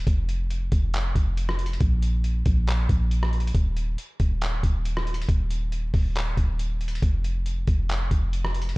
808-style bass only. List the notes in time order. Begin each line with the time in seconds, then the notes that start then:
0.07 F1
0.72 F1
1.15 F1
1.81 A#1
2.46 A#1
2.89 A#1
3.55 D#1
4.20 D#1
4.63 D#1
5.29 D#1
5.94 D#1
6.37 D#1
7.02 F1
7.68 F1
8.11 F1